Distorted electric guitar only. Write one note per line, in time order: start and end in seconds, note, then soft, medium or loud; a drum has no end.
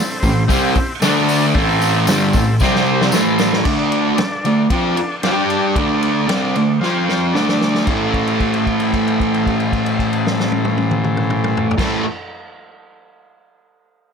0.23 0.44 A2 medium
0.23 0.44 E3 medium
0.48 0.74 C3 medium
0.48 0.75 G3 medium
0.48 0.75 C4 loud
0.76 muted distorted electric guitar stroke medium
1.02 1.54 D3 medium
1.02 1.54 A3 medium
1.02 1.55 D4 loud
1.56 2.07 A2 medium
1.56 2.08 E3 loud
1.56 2.08 A3 loud
2.08 2.33 G2 medium
2.08 2.34 D3 loud
2.08 2.34 G3 loud
2.36 2.56 A2 medium
2.36 2.56 E3 medium
2.61 3.12 C3 medium
2.61 3.13 G3 medium
2.61 3.14 C4 loud
3.13 3.65 A2 medium
3.13 3.66 E3 loud
3.13 3.65 A3 loud
3.65 4.17 D3 loud
3.65 4.18 A3 loud
3.65 4.18 D4 loud
4.19 muted distorted electric guitar stroke medium
4.45 4.66 D3 medium
4.45 4.66 A3 medium
4.70 4.96 F3 medium
4.70 4.97 C4 medium
4.70 4.97 F4 medium
4.97 muted distorted electric guitar stroke medium
5.24 5.76 G3 medium
5.24 5.76 D4 medium
5.24 5.77 G4 loud
5.76 6.28 D3 medium
5.76 6.29 A3 medium
5.76 6.30 D4 loud
6.28 6.55 C3 medium
6.28 6.55 G3 loud
6.28 6.56 C4 loud
6.56 6.77 D3 medium
6.56 6.77 A3 medium
6.81 7.34 F3 medium
6.81 7.35 C4 medium
6.81 7.35 F4 medium
7.35 7.87 D3 medium
7.35 7.88 A3 medium
7.35 7.88 D4 loud
7.87 11.72 A2 medium
7.87 11.73 E3 medium
7.87 11.74 A3 loud
11.78 12.02 A2 medium
11.78 12.03 E3 medium
11.78 12.04 A3 loud